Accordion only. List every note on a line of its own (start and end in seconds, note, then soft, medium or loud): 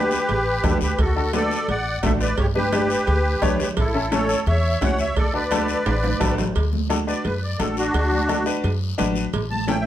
0.00 0.78 G4 medium
0.00 0.78 B4 loud
0.83 0.98 G4 medium
0.83 0.99 B4 medium
0.99 1.32 F#4 medium
0.99 1.32 A4 medium
1.35 1.67 A4 medium
1.35 1.67 D5 loud
1.69 2.01 D5 medium
1.69 2.02 F#5 medium
2.05 2.13 A4 medium
2.05 2.13 E5 medium
2.21 2.37 B4 medium
2.21 2.37 D5 medium
2.38 2.46 G4 medium
2.38 2.47 C#5 medium
2.56 3.56 G4 medium
2.56 3.59 B4 medium
3.61 3.69 G4 medium
3.61 3.68 B4 medium
3.79 4.11 E4 medium
3.79 4.11 A4 medium
4.14 4.46 A4 medium
4.14 4.45 C#5 medium
4.48 4.80 C#5 medium
4.48 4.83 E5 medium
4.83 4.99 C#5 medium
4.83 5.00 F#5 medium
5.00 5.16 C#5 medium
5.00 5.16 E5 medium
5.17 5.33 A4 medium
5.17 5.33 D5 medium
5.34 6.35 B4 medium
5.34 6.34 D5 medium
7.09 7.25 D5 medium
7.25 7.42 B4 medium
7.43 7.60 D5 medium
7.60 7.77 A4 medium
7.77 8.43 D4 medium
7.77 8.45 F#4 loud
9.50 9.68 A5 loud
9.69 9.86 G5 medium
9.81 9.84 E5 medium